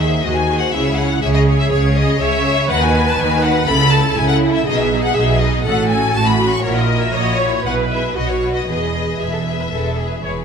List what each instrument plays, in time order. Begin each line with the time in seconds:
Already playing: double bass section D#2, cello section D#3, viola section G#4
0.00 violin section G#4 C5 E5
0.22 double bass section D#2, cello section D#3, viola section F#4, violin section G#4 C5 D#5
0.35 violin section G#5
0.49 violin section G#4 C5
0.60 violin section F#5
0.72 double bass section C#2, cello section C#3, viola section E4, violin section G#4 C#5 E5
0.97 violin section G#4 C#5 F#5
1.22 double bass section C#2, cello section C#3, viola section G#4, violin section G#4 C#5 E5
1.34 violin section D#5
1.47 violin section G#4 C#5
1.60 violin section E5
1.70 double bass section C#2, cello section C#3, violin section G#4 C#5
1.95 violin section G#4 C#5 D#5
2.20 double bass section C#2, cello section C#3, violin section G#4 C#5 E5, viola section C#5
2.45 violin section G#4 C#5
2.69 double bass section D#2, cello section D#3, violin section F#4 B4 F#5, viola section B4
2.82 violin section G#5
2.95 violin section F#4 B4
3.07 violin section A5
3.19 double bass section D#2, cello section D#3, violin section F#4 B4 G#5
3.43 violin section F#4 B4 F#5
3.67 double bass section C#2, cello section C#3, violin section E4 A4 B5, viola section A4
3.91 violin section E4 A4 A5
4.16 double bass section C#2, cello section C#3, viola section E4, violin section E4 A4 G#5
4.29 violin section F#5
4.43 violin section E4 A4
4.54 violin section E5
4.66 double bass section B1, cello section B2, violin section D#4 G#4 D#5, viola section G#4
4.78 violin section E5
4.92 violin section D#4 G#4
5.03 violin section F#5
5.14 double bass section B1, cello section B2, violin section D#4 G#4 E5
5.39 violin section D#4 G#4 D#5
5.65 double bass section A1, cello section A2, violin section C#4 F#4 F#5, viola section A4
5.89 violin section C#4 F#4 G#5
6.14 double bass section A1, cello section A2, violin section C#4 F#4 A5, viola section F#4
6.27 violin section B5
6.40 violin section C#4 F#4
6.52 violin section C#6
6.63 double bass section A#1, cello section A#2, violin section E4 F#4 C#5, viola section A#4
6.76 violin section D#5
6.91 violin section E4 F#4
7.02 violin section E5
7.14 double bass section A#1, cello section A#2, violin section E4 F#4 D#5, viola section C#5
7.39 violin section E4 F#4 C#5
7.64 double bass section B1, cello section B2, violin section E4 G#4 F#5, viola section B4
7.89 violin section E4 G#4 E5
8.15 double bass section B1, cello section B2, viola section F#4, violin section F#4 B4 D#5
8.27 violin section C#5
8.42 violin section F#4 B4
8.54 violin section D#5
8.67 double bass section E1, cello section E2, viola section G#4, violin section G#4 B4 D#5
8.95 violin section G#4 B4
9.20 double bass section E1, cello section E2, viola section G#4, violin section G#4 B4 E5
9.33 viola section A4
9.46 violin section G#4 B4
9.60 viola section B4
9.71 double bass section E1, cello section E2, violin section G#4 B4, viola section A4
9.97 violin section G#4 B4, viola section G#4
10.23 double bass section E1, cello section E2, violin section G#4 B4, viola section C#5